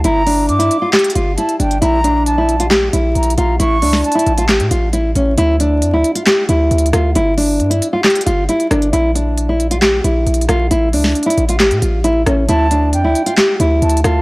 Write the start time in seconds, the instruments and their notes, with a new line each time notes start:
0.04 808-style bass G1, nylon-string guitar E4, flute A#5, closed hi-hat
0.26 nylon-string guitar D4, open hi-hat
0.49 808-style bass G2, flute D6, closed hi-hat
0.59 nylon-string guitar E4, closed hi-hat
0.71 closed hi-hat
0.82 nylon-string guitar F4
0.93 nylon-string guitar G4, snare, clap, closed hi-hat
0.99 closed hi-hat
1.04 closed hi-hat
1.10 closed hi-hat
1.15 808-style bass G1, nylon-string guitar F4, closed hi-hat
1.37 nylon-string guitar E4, flute A5, closed hi-hat
1.49 closed hi-hat
1.59 808-style bass G1, nylon-string guitar D4, flute G5, closed hi-hat
1.71 closed hi-hat
1.82 808-style bass A#1, nylon-string guitar E4, flute A#5, closed hi-hat
2.04 nylon-string guitar D4, closed hi-hat
2.26 flute A5, closed hi-hat
2.38 nylon-string guitar E4
2.49 closed hi-hat
2.60 nylon-string guitar F4, closed hi-hat
2.70 nylon-string guitar G4, snare, clap, closed hi-hat
2.93 808-style bass A#1, nylon-string guitar E4, closed hi-hat
3.15 808-style bass A#1, flute A#5, closed hi-hat
3.23 closed hi-hat
3.30 closed hi-hat
3.38 808-style bass A#1, nylon-string guitar F4, flute A#5, closed hi-hat
3.59 808-style bass A1, nylon-string guitar E4, flute C#6, closed hi-hat
3.82 808-style bass C#2, nylon-string guitar D4, open hi-hat
3.93 snare
4.04 flute A5, closed hi-hat
4.12 nylon-string guitar E4, closed hi-hat
4.19 closed hi-hat
4.26 808-style bass A1, closed hi-hat
4.38 nylon-string guitar F4, closed hi-hat
4.49 nylon-string guitar G4, snare, clap, closed hi-hat
4.60 808-style bass A2, closed hi-hat
4.71 808-style bass A1, nylon-string guitar F4, closed hi-hat
4.93 nylon-string guitar E4, closed hi-hat
5.15 808-style bass A1, nylon-string guitar C#4, closed hi-hat
5.38 808-style bass D2, nylon-string guitar E4, closed hi-hat
5.60 nylon-string guitar D4, closed hi-hat
5.82 808-style bass F2, closed hi-hat
5.93 808-style bass D2, nylon-string guitar E4
6.04 closed hi-hat
6.15 nylon-string guitar F4, closed hi-hat
6.27 nylon-string guitar G4, snare, clap, closed hi-hat
6.49 808-style bass D2, nylon-string guitar E4, closed hi-hat
6.71 808-style bass D2, closed hi-hat
6.78 closed hi-hat
6.86 closed hi-hat
6.93 808-style bass D2, nylon-string guitar F4, cross-stick, closed hi-hat
7.15 808-style bass G1, nylon-string guitar E4, closed hi-hat
7.37 nylon-string guitar D4, open hi-hat
7.60 808-style bass G2, closed hi-hat
7.70 nylon-string guitar E4, closed hi-hat
7.82 closed hi-hat
7.93 nylon-string guitar F4
8.04 nylon-string guitar G4, snare, clap, closed hi-hat
8.10 closed hi-hat
8.15 closed hi-hat
8.21 closed hi-hat
8.26 808-style bass G1, nylon-string guitar F4, closed hi-hat
8.49 nylon-string guitar E4, closed hi-hat
8.60 closed hi-hat
8.71 808-style bass G1, nylon-string guitar D4, cross-stick, closed hi-hat
8.82 closed hi-hat
8.93 808-style bass A#1, nylon-string guitar E4, closed hi-hat
9.15 nylon-string guitar D4, closed hi-hat
9.38 closed hi-hat
9.49 nylon-string guitar E4
9.60 closed hi-hat
9.71 nylon-string guitar F4, closed hi-hat
9.81 nylon-string guitar G4, snare, clap, closed hi-hat
10.04 808-style bass A#1, nylon-string guitar E4, closed hi-hat
10.26 808-style bass A#1, closed hi-hat
10.34 closed hi-hat
10.41 closed hi-hat
10.49 808-style bass A#1, nylon-string guitar F4, cross-stick, closed hi-hat
10.71 808-style bass A1, nylon-string guitar E4, closed hi-hat
10.93 808-style bass C#2, nylon-string guitar D4, open hi-hat
11.04 snare
11.15 closed hi-hat
11.23 nylon-string guitar E4, closed hi-hat
11.30 closed hi-hat
11.38 808-style bass A1, closed hi-hat
11.49 nylon-string guitar F4, closed hi-hat
11.60 nylon-string guitar G4, snare, clap, closed hi-hat
11.71 808-style bass A2, closed hi-hat
11.82 808-style bass A1, nylon-string guitar F4, closed hi-hat
12.04 nylon-string guitar E4, closed hi-hat
12.26 808-style bass A1, nylon-string guitar C#4, cross-stick, closed hi-hat
12.49 808-style bass D2, nylon-string guitar E4, flute A5, closed hi-hat
12.71 nylon-string guitar D4, closed hi-hat
12.93 808-style bass F2, flute G5, closed hi-hat
13.04 808-style bass D2, nylon-string guitar E4
13.15 closed hi-hat
13.26 nylon-string guitar F4, closed hi-hat
13.38 nylon-string guitar G4, snare, clap, closed hi-hat
13.60 808-style bass D2, nylon-string guitar E4, closed hi-hat
13.82 808-style bass D2, flute A5, closed hi-hat
13.89 closed hi-hat
13.97 closed hi-hat
14.04 808-style bass D2, nylon-string guitar F4, flute A5, cross-stick, closed hi-hat